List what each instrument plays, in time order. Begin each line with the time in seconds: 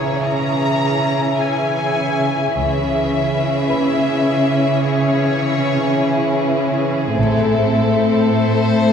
Already playing: cello section C#3, viola section E3 C#4, violin section E4 G#4 C#5, synth texture G#4 C#5 E5, felt piano G#5 A#5
0.24 violin section A#5
1.38 violin section G#5
2.55 double bass section C#2, cello section C#3, viola section E3 C#4, violin section E4 G#4 E5, synth texture G#4 C#5 E5
3.70 felt piano B4 B5
4.87 violin section C#5
7.15 double bass section A1, cello section A2, viola section A3 C4, violin section E4 A4, synth texture A4 C5 E5
8.31 violin section C5